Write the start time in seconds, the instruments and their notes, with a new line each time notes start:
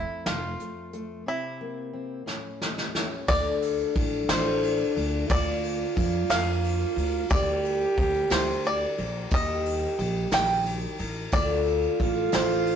Already playing: steel-string acoustic guitar F2 A3, five-string banjo E4
0.26 upright bass F1, steel-string acoustic guitar A3, five-string banjo F4, snare, closed hi-hat
0.59 steel-string acoustic guitar A3, closed hi-hat
0.93 steel-string acoustic guitar A3, closed hi-hat
1.26 steel-string acoustic guitar C3 C4, five-string banjo E4
1.61 steel-string acoustic guitar A#3
1.93 steel-string acoustic guitar C4
2.26 steel-string acoustic guitar A2 C#4, snare
2.62 steel-string acoustic guitar G3, snare
2.78 snare
2.95 steel-string acoustic guitar C#4, snare
3.27 upright bass D2, twelve-string acoustic guitar D3 A3 D4 F4 A4, french horn D4, five-string banjo D5, kick, crash, tambourine
3.44 tambourine
3.62 ride, tambourine
3.79 tambourine
3.95 upright bass A1, twelve-string acoustic guitar A3 D4 F4 A4, kick, ride
4.13 tambourine
4.28 upright bass A1, twelve-string acoustic guitar D3 A3 D4 F4 A4, five-string banjo C5, snare, ride, tambourine
4.63 ride, tambourine
4.79 tambourine
4.95 upright bass D2, twelve-string acoustic guitar D4 F4 A4, ride
5.29 upright bass D2, twelve-string acoustic guitar D3 A#3 D4 F4 A#4, french horn F4, five-string banjo D5, kick, ride, tambourine
5.47 tambourine
5.63 ride, tambourine
5.80 tambourine
5.95 upright bass F2, twelve-string acoustic guitar A#3 D4 F4 A#4, kick, ride
6.13 tambourine
6.29 upright bass F2, twelve-string acoustic guitar D3 A#3 D4 F4 A#4, five-string banjo F5, snare, ride, tambourine
6.64 ride, tambourine
6.81 tambourine
6.95 upright bass D2, twelve-string acoustic guitar D4 F4 A#4, ride
7.29 upright bass D2, twelve-string acoustic guitar D3 G3 D4 G4 A#4, french horn G4, five-string banjo D5, kick, ride, tambourine
7.47 tambourine
7.63 ride, tambourine
7.81 tambourine
7.96 upright bass D2, twelve-string acoustic guitar G3 D4 G4 A#4, kick, ride
8.14 tambourine
8.30 upright bass D2, twelve-string acoustic guitar D3 G3 D4 G4 A#4, five-string banjo C5, snare, ride, tambourine
8.64 five-string banjo D5, ride, tambourine
8.81 tambourine
8.97 upright bass A#1, twelve-string acoustic guitar D4 G4 A#4, ride
9.30 upright bass D#2, twelve-string acoustic guitar D#3 G3 D#4 G4 A#4, french horn G4, five-string banjo D#5, kick, ride, tambourine
9.65 ride
9.97 upright bass A#1, twelve-string acoustic guitar G3 D#4 G4 A#4, ride
10.15 tambourine
10.31 upright bass A#1, twelve-string acoustic guitar D#3 G3 D#4 G4 A#4, five-string banjo G5, snare, ride, tambourine
10.65 ride, tambourine
10.82 tambourine
10.98 upright bass A1, twelve-string acoustic guitar D#4 G4 A#4, ride, tambourine
11.16 tambourine
11.31 upright bass D2, twelve-string acoustic guitar D3 A3 D4 F4 A4, french horn F4, five-string banjo D5, kick, ride, tambourine
11.48 tambourine
11.65 ride, tambourine
11.82 tambourine
11.98 upright bass A1, twelve-string acoustic guitar A3 D4 F4 A4, kick, ride
12.15 tambourine
12.32 upright bass A1, twelve-string acoustic guitar D3 A3 D4 F4 A4, five-string banjo C5, snare, ride, tambourine
12.66 ride, tambourine